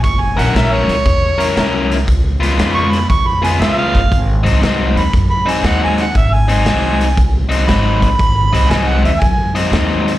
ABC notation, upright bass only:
X:1
M:4/4
L:1/8
Q:"Swing" 1/4=118
K:Abdor
V:1 name="Upright bass" clef=bass
G,,, B,,, B,,, D,, _F,,2 =C,,2 | D,,2 F,,2 F,,2 D,, G,,, | A,,, =C,, C,, E,, G,,2 E,,2 | A,,,2 =C,,2 C,,2 A,,, C,, |
A,,, =C,, C,, E,, G,,2 E,,2 |]